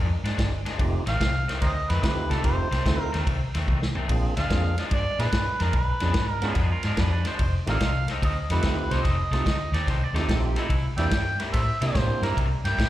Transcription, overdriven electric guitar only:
0.25 0.48 A#2 medium
0.25 0.48 F3 medium
0.25 0.47 G#3 medium
0.25 0.47 D4 medium
0.66 0.81 A#2 medium
0.66 0.80 F3 medium
0.66 0.80 G#3 medium
0.66 0.80 D4 medium
1.07 1.30 F2 medium
1.07 1.30 D#3 medium
1.07 1.29 A3 loud
1.07 1.29 C4 loud
1.49 1.71 F2 medium
1.49 1.71 D#3 medium
1.49 1.71 A3 medium
1.49 1.71 C4 medium
1.90 2.13 F2 medium
1.90 2.13 D#3 medium
1.90 2.12 A3 medium
1.90 2.12 C4 loud
2.31 2.54 F2 medium
2.31 2.54 D#3 medium
2.31 2.54 A3 medium
2.31 2.53 C4 medium
2.72 2.95 F2 medium
2.72 2.95 D#3 medium
2.72 2.94 A3 loud
2.72 2.94 C4 loud
3.13 3.36 F2 medium
3.13 3.36 D#3 medium
3.13 3.36 A3 medium
3.13 3.35 C4 medium
3.55 3.78 F2 medium
3.55 3.77 D#3 medium
3.55 3.77 A3 medium
3.55 3.77 C4 medium
3.96 4.11 F2 medium
3.96 4.10 D#3 medium
3.96 4.10 A3 medium
3.96 4.10 C4 medium
4.37 4.60 A#2 medium
4.37 4.60 F3 medium
4.37 4.60 G#3 medium
4.37 4.59 D4 medium
4.79 5.02 A#2 medium
4.79 5.01 F3 medium
4.79 5.01 G#3 medium
4.79 5.01 D4 medium
5.20 5.42 A#2 medium
5.20 5.42 F3 medium
5.20 5.42 G#3 medium
5.20 5.42 D4 medium
5.60 5.75 A#2 medium
5.60 5.75 F3 medium
5.60 5.75 G#3 medium
5.60 5.74 D4 medium
6.01 6.24 B2 medium
6.01 6.24 F3 medium
6.01 6.24 G#3 loud
6.01 6.24 D4 loud
6.44 6.67 B2 medium
6.44 6.66 F3 medium
6.44 6.66 G#3 medium
6.44 6.66 D4 medium
6.85 7.08 B2 medium
6.85 7.07 F3 medium
6.85 7.07 G#3 medium
6.85 7.07 D4 medium
7.26 7.40 B2 medium
7.26 7.40 F3 medium
7.26 7.40 G#3 medium
7.26 7.40 D4 medium
7.69 7.91 F3 medium
7.69 7.91 C4 medium
7.69 7.90 D#4 loud
7.69 7.90 A4 medium
8.10 8.32 F3 medium
8.10 8.32 C4 medium
8.10 8.32 D#4 medium
8.10 8.32 A4 medium
8.51 8.73 F3 medium
8.51 8.73 C4 medium
8.51 8.73 D#4 medium
8.51 8.73 A4 medium
8.92 9.15 F3 medium
8.92 9.15 C4 medium
8.92 9.14 D#4 medium
8.92 9.14 A4 medium
9.32 9.55 F3 medium
9.32 9.56 C4 medium
9.32 9.55 D#4 medium
9.32 9.55 A4 loud
9.74 9.97 F3 medium
9.74 9.97 C4 medium
9.74 9.97 D#4 medium
9.74 9.96 A4 medium
10.15 10.38 F3 medium
10.15 10.38 C4 medium
10.15 10.38 D#4 medium
10.15 10.38 A4 medium
10.57 10.72 F3 medium
10.57 10.71 C4 medium
10.57 10.71 D#4 medium
10.57 10.71 A4 medium
10.99 11.22 C3 medium
10.99 11.21 G3 medium
10.99 11.21 A#3 medium
10.99 11.21 E4 loud
11.40 11.63 C3 medium
11.40 11.63 G3 medium
11.40 11.62 A#3 medium
11.40 11.62 E4 medium
11.82 12.04 C3 medium
11.82 12.04 G3 medium
11.82 12.04 A#3 medium
11.82 12.04 E4 medium
12.23 12.46 C3 medium
12.23 12.46 G3 medium
12.23 12.45 A#3 medium
12.23 12.45 E4 medium
12.65 12.88 C3 medium
12.65 12.87 G3 medium
12.65 12.87 A#3 medium
12.65 12.87 E4 medium

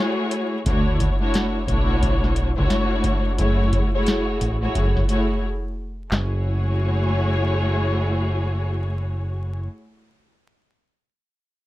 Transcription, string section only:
0.00 0.59 A3 loud
0.00 0.60 E4 loud
0.00 0.60 F#4 loud
0.00 0.60 G#4 medium
0.00 0.60 C#5 loud
0.66 1.16 A3 loud
0.66 1.16 D4 medium
0.66 1.16 E4 medium
0.66 1.16 F#4 medium
0.66 1.16 C#5 loud
1.20 1.65 A3 loud
1.20 1.65 D4 medium
1.20 1.65 E4 medium
1.20 1.65 F#4 medium
1.20 1.65 C#5 loud
1.67 2.48 A3 loud
1.67 2.49 D4 loud
1.67 2.49 E4 loud
1.67 2.49 F#4 medium
1.67 2.49 C#5 loud
2.57 3.33 A3 loud
2.57 3.33 D4 medium
2.57 3.33 E4 medium
2.57 3.33 F#4 loud
2.57 3.34 C#5 loud
3.38 3.89 A3 loud
3.38 3.89 E4 medium
3.38 3.89 F#4 medium
3.38 3.89 G#4 medium
3.38 3.89 C#5 loud
3.93 4.55 A3 loud
3.93 4.55 E4 medium
3.93 4.55 F#4 medium
3.93 4.55 G#4 medium
3.93 4.56 C#5 loud
4.61 5.05 A3 loud
4.61 5.06 E4 medium
4.61 5.06 F#4 medium
4.61 5.06 G#4 medium
4.61 5.06 C#5 loud
5.09 5.43 A3 medium
5.09 5.43 E4 medium
5.09 5.43 F#4 medium
5.09 5.43 G#4 medium
5.09 5.43 C#5 loud
6.11 9.60 A3 loud
6.11 9.60 E4 medium
6.11 9.60 F#4 medium
6.11 9.60 G#4 medium
6.11 9.60 C#5 loud

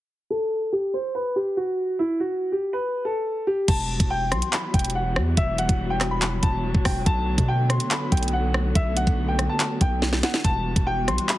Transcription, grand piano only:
0.30 0.70 A4 medium
0.72 0.93 G4 medium
0.94 1.14 C5 medium
1.15 1.35 B4 medium
1.36 1.56 G4 medium
1.57 1.97 F#4 medium
1.99 2.19 E4 medium
2.20 2.50 F#4 medium
2.52 2.72 G4 medium
2.73 3.03 B4 medium
3.05 3.45 A4 medium
3.47 3.67 G4 medium
3.68 4.08 A5 loud
4.10 4.30 G5 loud
4.32 4.52 C6 medium
4.53 4.73 B5 medium
4.74 4.94 G5 medium
4.95 5.35 F#5 medium
5.37 5.57 E5 medium
5.58 5.88 F#5 medium
5.90 6.10 G5 medium
6.11 6.41 B5 medium
6.43 6.83 A5 medium
6.85 7.05 G5 medium
7.06 7.46 A5 loud
7.48 7.68 G5 medium
7.70 7.90 C6 medium
7.91 8.11 B5 medium
8.12 8.32 G5 medium
8.33 8.73 F#5 medium
8.75 8.95 E5 medium
8.97 9.26 F#5 medium
9.28 9.48 G5 medium
9.49 9.79 A5 medium
9.81 10.21 G5 medium
10.23 10.43 F#5 medium
10.45 10.84 A5 loud
10.87 11.07 G5 loud
11.08 11.28 C6 medium
11.29 11.38 B5 medium

